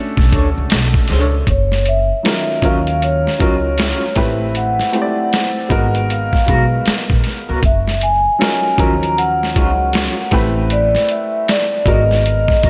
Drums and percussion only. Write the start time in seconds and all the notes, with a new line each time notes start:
0.17 kick, snare
0.32 kick, closed hi-hat
0.70 snare, closed hi-hat
0.94 kick
1.08 snare, closed hi-hat
1.47 kick, closed hi-hat
1.72 snare, closed hi-hat
1.86 closed hi-hat
2.25 snare, closed hi-hat
2.62 kick, closed hi-hat
2.87 closed hi-hat
3.02 closed hi-hat
3.27 snare
3.40 kick, closed hi-hat
3.78 snare, closed hi-hat
4.16 kick, snare, closed hi-hat
4.55 closed hi-hat
4.79 snare, closed hi-hat
4.93 closed hi-hat
5.33 snare, closed hi-hat
5.70 kick, closed hi-hat
5.95 closed hi-hat
6.10 closed hi-hat
6.33 kick, snare
6.48 kick, closed hi-hat
6.86 snare, closed hi-hat
7.10 kick
7.24 snare, closed hi-hat
7.63 kick, closed hi-hat
7.87 snare, closed hi-hat
8.01 closed hi-hat
8.41 snare, closed hi-hat
8.78 kick, closed hi-hat
9.03 closed hi-hat
9.18 closed hi-hat
9.43 snare
9.56 kick, closed hi-hat
9.93 snare, closed hi-hat
10.31 kick, snare, closed hi-hat
10.70 closed hi-hat
10.95 snare, closed hi-hat
11.09 closed hi-hat
11.48 snare, closed hi-hat
11.86 kick, closed hi-hat
12.11 snare
12.26 closed hi-hat
12.48 kick, snare
12.63 kick, closed hi-hat